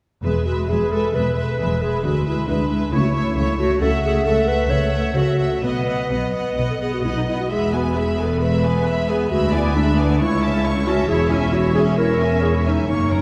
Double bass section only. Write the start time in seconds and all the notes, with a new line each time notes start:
0.23 E1
0.70 E1
1.15 E1
1.60 E1
2.05 D2
2.49 D2
2.93 C#2
3.37 C#2
3.82 C#2
4.26 C#2
4.71 C#2
5.16 C#2
5.63 B1
6.11 B1
6.58 B1
7.05 B1
7.51 E1
9.31 D2
10.20 C#2
11.09 E1
12.87 F#1